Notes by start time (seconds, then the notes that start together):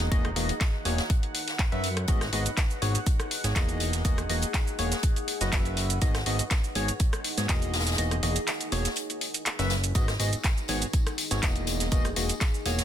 Already playing: D#4 G#4 F#5
0.00 closed hi-hat
0.12 E3 A#3 F#4 G#4 D#5, kick, closed hi-hat
0.25 cross-stick, closed hi-hat
0.36 E1 E3 A#3 F#4 G#4 D#5, closed hi-hat, open hi-hat
0.49 closed hi-hat
0.61 kick, snare, clap, closed hi-hat
0.85 E1 A#3 F#4 G#4 C#5, closed hi-hat, open hi-hat
0.98 snare, closed hi-hat
1.10 kick, closed hi-hat
1.16 B4
1.23 closed hi-hat
1.35 C#5, closed hi-hat, open hi-hat
1.48 snare, closed hi-hat
1.59 kick, snare, clap, closed hi-hat
1.72 F#2 F#3 C#4 F#4 B4 E5, closed hi-hat
1.84 closed hi-hat, open hi-hat
1.97 cross-stick, closed hi-hat
2.08 G#1 G#2 B3 D#4 F#4 G#4 D#5, kick, closed hi-hat, cabasa
2.21 cross-stick, snare, closed hi-hat, cabasa
2.33 G#1 G#2 B3 F#4 G#4 D#5, closed hi-hat, open hi-hat
2.46 G#4, closed hi-hat, cabasa
2.57 kick, snare, clap, closed hi-hat, cabasa
2.71 cabasa
2.82 G#1 G#2 B3 F#4 G#4 C#5, closed hi-hat, open hi-hat
2.95 closed hi-hat, cabasa
3.06 kick, closed hi-hat, cabasa
3.20 cross-stick, closed hi-hat, cabasa
3.31 closed hi-hat, open hi-hat
3.44 G#1 G#2 B3 F#4 G#4 C#5, snare, closed hi-hat, cabasa
3.55 E1 E3 A#3 F#4 G#4 D#5, kick, snare, clap, closed hi-hat, cabasa
3.69 closed hi-hat, cabasa
3.80 closed hi-hat, open hi-hat
3.93 snare, closed hi-hat, cabasa
4.05 E1 E3 A#3 F#4 G#4 D#5, kick, closed hi-hat, cabasa
4.18 cross-stick, closed hi-hat, cabasa
4.29 E1 E3 A#3 F#4 G#4 D#5, closed hi-hat, open hi-hat
4.42 closed hi-hat, cabasa
4.54 kick, snare, clap, closed hi-hat, cabasa
4.67 cabasa
4.79 E1 A#3 F#4 G#4 C#5, closed hi-hat, open hi-hat
4.92 snare, closed hi-hat, cabasa
5.03 kick, closed hi-hat, cabasa
5.16 closed hi-hat, cabasa
5.28 closed hi-hat, open hi-hat
5.41 F#1 F#3 C#4 F#4 B4 D#5, snare, closed hi-hat, cabasa
5.48 C#5
5.52 C#4, kick, snare, clap, closed hi-hat, cabasa
5.65 closed hi-hat, cabasa
5.77 closed hi-hat, open hi-hat
5.90 closed hi-hat, cabasa
6.02 G#1 G#2 B3 D#4 F#4 G#4 D#5, kick, closed hi-hat, cabasa
6.14 cross-stick, snare, closed hi-hat, cabasa
6.20 G#4
6.26 G#1 G#2 B3 F#4 G#4 D#5, closed hi-hat, open hi-hat
6.39 closed hi-hat, cabasa
6.50 kick, snare, clap, closed hi-hat, cabasa
6.64 cabasa
6.75 G#1 G#2 B3 F#4 G#4 C#5, closed hi-hat, open hi-hat
6.88 closed hi-hat, cabasa
7.00 kick, closed hi-hat, cabasa
7.13 cross-stick, closed hi-hat, cabasa
7.24 closed hi-hat, open hi-hat
7.38 G#2 B3 F#4 G#4 C#5, snare, closed hi-hat, cabasa
7.49 E1 E3 A#3 F#4 G#4 D#5, kick, snare, clap, closed hi-hat, cabasa
7.62 closed hi-hat, cabasa
7.74 snare, closed hi-hat, open hi-hat
7.80 snare, closed hi-hat
7.87 snare, closed hi-hat, cabasa
7.92 snare, closed hi-hat
7.98 E1 E3 A#3 F#4 G#4 D#5, closed hi-hat, cabasa
8.11 cross-stick, closed hi-hat, cabasa
8.23 E1 E3 A#3 F#4 G#4 D#5, closed hi-hat, open hi-hat
8.36 closed hi-hat, cabasa
8.47 snare, clap, closed hi-hat, cabasa
8.61 closed hi-hat, cabasa
8.72 E1 A#3 F#4 G#4 C#5, closed hi-hat, open hi-hat
8.85 snare, closed hi-hat, cabasa
8.96 closed hi-hat, cabasa
9.08 B4, closed hi-hat, cabasa
9.21 closed hi-hat, open hi-hat
9.34 C#5, closed hi-hat, cabasa
9.46 clap, closed hi-hat, cabasa
9.59 F#1 F#3 C#4 F#4 B4 E5, snare, closed hi-hat, cabasa
9.70 snare, closed hi-hat, open hi-hat
9.84 closed hi-hat, cabasa
9.95 G#2 B3 D#4 F#4 G#4 D#5, kick, closed hi-hat, tambourine, cabasa
10.08 G#4, cross-stick, snare, closed hi-hat, tambourine, cabasa
10.20 G#1 G#2 B3 F#4 G#4 D#5, closed hi-hat, open hi-hat, tambourine
10.33 closed hi-hat, tambourine, cabasa
10.43 kick, snare, clap, closed hi-hat, tambourine, cabasa
10.57 tambourine, cabasa
10.68 G#1 G#2 B3 F#4 G#4 C#5, closed hi-hat, open hi-hat, tambourine
10.82 closed hi-hat, cabasa
10.93 kick, closed hi-hat, tambourine, cabasa
11.07 cross-stick, closed hi-hat, tambourine, cabasa
11.18 closed hi-hat, open hi-hat, tambourine
11.31 G#1 G#2 B3 F#4 G#4 C#5, snare, closed hi-hat, tambourine, cabasa
11.43 E1 E3 A#3 F#4 G#4 D#5, kick, snare, clap, closed hi-hat, tambourine, cabasa
11.56 closed hi-hat, tambourine, cabasa
11.67 closed hi-hat, open hi-hat, tambourine
11.80 snare, closed hi-hat, tambourine, cabasa
11.92 E1 E3 A#3 F#4 G#4 D#5, kick, closed hi-hat, tambourine, cabasa
12.04 cross-stick, closed hi-hat, tambourine, cabasa
12.16 E1 E3 A#3 F#4 G#4 D#5, closed hi-hat, open hi-hat, tambourine
12.29 closed hi-hat, tambourine, cabasa
12.41 kick, snare, clap, closed hi-hat, tambourine, cabasa
12.54 tambourine, cabasa
12.65 E1 A#3 F#4 G#4 C#5, closed hi-hat, open hi-hat, tambourine
12.78 snare, closed hi-hat, tambourine, cabasa